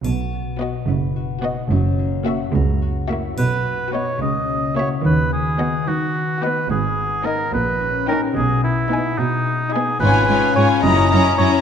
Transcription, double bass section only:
X:1
M:6/8
L:1/8
Q:3/8=72
K:B
V:1 name="Double bass section" clef=bass
B,,,3 F,,,3 | F,,,3 C,,3 | B,,,2 z C,,2 z | D,,2 z4 |
G,,,2 z A,,,2 z | B,,,2 z4 | G,,, z2 F,,, z2 |]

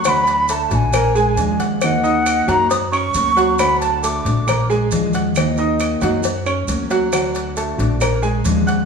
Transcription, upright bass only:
X:1
M:4/4
L:1/8
Q:1/4=136
K:Ebm
V:1 name="Upright bass" clef=bass
=D,,3 B,,,3 E,,2- | E,,3 G,,3 =D,,2- | =D,,3 B,,,3 E,,2- | E,,3 G,,3 =D,,2- |
=D,,3 B,,,3 E,,2 |]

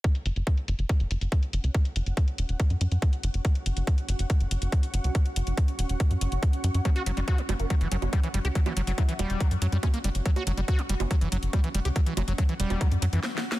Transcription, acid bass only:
X:1
M:4/4
L:1/16
Q:1/4=141
K:none
V:1 name="Acid bass" clef=bass
z16 | z16 | z16 | z16 |
^F, ^F F, G, F F, G, z F, E, F, z G, E, G, G | ^F, E, F, F, F, E, G,2 F, z F, G, ^C ^A, G, z | ^F, ^F F, G, F F, G, z F, E, F, z G, E, G, G | ^F, E, F, F, F, E, G,2 F, z F, E, z4 |]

